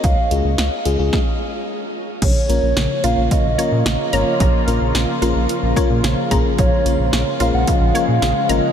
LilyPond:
<<
  \new Staff \with { instrumentName = "Soft synth lead" } { \time 4/4 \key bes \phrygian \tempo 4 = 110 f''4 r2. | des''4. f''8 ees''4. des''8~ | des''8 r2. r8 | des''4 r8 f''16 ges''16 f''4. ees''8 | }
  \new Staff \with { instrumentName = "FM electric piano" } { \time 4/4 \key bes \phrygian r8 <aes des' f' aes'>16 r8. <aes des' f' aes'>16 <aes des' f' aes'>16 r2 | r8 <bes des' f' bes'>16 r8. <bes des' f' bes'>16 r8. <bes des' f' bes'>16 r8. <bes des' f' bes'>16 r16 | r8 <bes des' f' bes'>16 r8. <bes des' f' bes'>16 r8. <bes des' f' bes'>16 r8. <bes des' f' aes'>16 r16 | r8 <bes des' f' des''>16 r8. <bes des' f' bes'>16 r8. <bes des' f' bes'>16 r8. <bes des' f' bes'>16 r16 | }
  \new Staff \with { instrumentName = "Synth arpeggio sound" } { \time 4/4 \key bes \phrygian r1 | des8 r8 des8 f'8 r8 des''8 des8 bes''8 | des8 r8 des8 f'8 r8 des''8 des8 bes''8 | des8 r8 des8 f'8 r8 des''8 des8 bes''8 | }
  \new Staff \with { instrumentName = "Analog synth pad" } { \clef bass \time 4/4 \key bes \phrygian << { r1 | <des f f'>1~ | <des f f'>1~ | <des f f'>1 | } \\ { r1 | bes1~ | bes1 | aes1 | } >> }
  \new Staff \with { instrumentName = "Analog synth bass" } { \clef bass \time 4/4 \key bes \phrygian des,16 r16 des,16 des,16 des,16 r16 des,16 des,16 r2 | bes,,16 r16 bes,,16 bes,,16 bes,,16 r16 bes,,16 bes,,16 r16 bes,,16 r16 bes,16 bes,,16 r16 aes,,16 r16 | bes,,16 r16 bes,,16 bes,,16 bes,,16 r16 bes,,16 bes,,16 r16 bes,,16 r16 bes,16 bes,,16 r16 bes,,16 r16 | bes,,16 r16 bes,,16 bes,,16 bes,,16 r16 bes,,16 bes,,16 r16 bes,,16 r16 bes,16 bes,,16 r16 aes,,16 r16 | }
  \new DrumStaff \with { instrumentName = "Drums" } \drummode { \time 4/4 <hh bd>8 hh8 <hh sn>8 hh8 <bd sn>4 r4 | <cymc hh bd>8 hh8 <hh sn>8 hh8 <hh bd>8 hh8 <hh sn>8 hh8 | <hh bd>8 hh8 <hh sn>8 hh8 hh8 <hh bd>8 <hh sn>8 <hh bd>8 | <hh bd>8 hh8 <hh sn>8 hh8 <hh bd>8 hh8 <hh sn>8 hh8 | }
>>